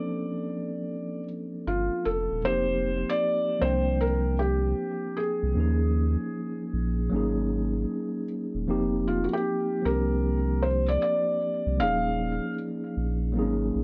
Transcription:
Already playing: F3 A#3 C4 C#4 D4 A4 D5
1.67 G1 F4
2.05 F1 A4
2.32 D#1
2.44 F1 F3 A#3 C4 D#4 G4 C5
3.09 D5
3.59 C2 F3 A#3 C4 C5
3.64 D4 G5
4.01 A#4
4.39 G4
5.17 G#4
5.43 C2
5.53 D#2 F3 A#3 C#4
5.58 D#4 G#4
6.73 A#1
7.10 G#1 F#3 A#3 C#4
7.15 D#4 G#4
8.55 D#1
8.68 F1 F3 A#3 C4 D#4 G4
9.08 F4
9.24 F#4
9.33 G4
9.82 C2 F3 A#3 C4 A#4
9.87 D4 G4
10.62 C5
10.88 D5
11.02 D5
11.67 C2
11.76 D#1 F3 A#3 C#4 F5
11.81 D#4 G#4
12.97 A#1
13.32 G#1 F#3 A#3 C4
13.37 D#4 G#4
13.42 C#4
13.75 A#1

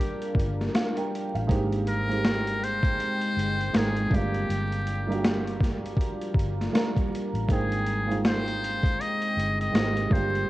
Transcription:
Already playing: G3 A#3 D4 F4 G4 G#4 A#4
0.01 closed hi-hat
0.22 closed hi-hat
0.35 G1, kick
0.39 closed hi-hat
0.61 snare, closed hi-hat
0.75 F5, snare, closed hi-hat
0.97 A#4 G5, closed hi-hat
1.15 closed hi-hat
1.35 A1 F5, closed hi-hat
1.47 G#1 G#3 A#3 C4 D#4 G5, kick, closed hi-hat
1.52 G4
1.72 closed hi-hat
1.87 A#4, closed hi-hat
2.08 G#3 A#3 C4 D#4
2.12 G4, closed hi-hat
2.25 snare, closed hi-hat
2.47 closed hi-hat
2.64 C5, closed hi-hat
2.83 kick, closed hi-hat
3.00 closed hi-hat
3.21 closed hi-hat
3.37 G1, closed hi-hat
3.61 closed hi-hat
3.73 G#1 G#3 A#3 C4 D#4, snare, closed hi-hat
3.77 G#4 A#4
3.96 closed hi-hat
4.10 G1 G3 A3 D4 F4 A#4, kick
4.14 A#3 G4, closed hi-hat
4.34 closed hi-hat
4.49 G1, closed hi-hat
4.72 closed hi-hat
4.86 closed hi-hat
5.07 G3 A#3 D4 F4
5.11 F#4, closed hi-hat
5.18 G4
5.24 snare, closed hi-hat
5.47 closed hi-hat
5.60 kick, snare, closed hi-hat
5.86 closed hi-hat
5.97 kick
6.01 closed hi-hat
6.22 closed hi-hat
6.35 G1, kick
6.39 closed hi-hat
6.61 snare, closed hi-hat
6.72 G3 A#3 D4 F4, snare, closed hi-hat
6.77 A#4
6.96 kick, closed hi-hat
7.15 closed hi-hat
7.34 A1, closed hi-hat
7.47 G#1 G#3 A#3 C4 D#4 G5, kick, closed hi-hat
7.52 G#4 G5
7.72 closed hi-hat
7.86 closed hi-hat
8.06 G#3 A#3 C4 D#4
8.11 F4, closed hi-hat
8.25 C5, snare, closed hi-hat
8.48 closed hi-hat
8.64 closed hi-hat
8.83 kick, closed hi-hat
9.01 D#5, closed hi-hat
9.22 closed hi-hat
9.37 G1, closed hi-hat
9.61 D#5, closed hi-hat
9.72 G#1 G#3 A#3 C4 D#4, snare, closed hi-hat
9.77 G4
9.97 closed hi-hat
10.10 G1 F3 G3 A#3 D4 F4 A#4 C5, kick
10.14 G4, closed hi-hat
10.36 closed hi-hat

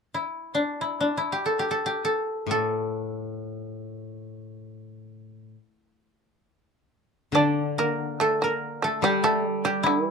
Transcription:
0.14 E4
0.55 D4
0.81 E4
1.00 D4
1.17 E4
1.32 G4
1.46 A4
1.59 G4
1.71 A4
1.86 G4
2.05 A4
2.46 A2
2.51 A4
7.32 D3 D4 D5
7.78 A#3 A#4
8.20 A3 A4
8.42 A#3 A#4
8.82 A3 A4
9.02 G3 G4
9.24 A3 A4
9.49 G3
9.65 G3 G4
9.83 D3 E4
10.04 E3

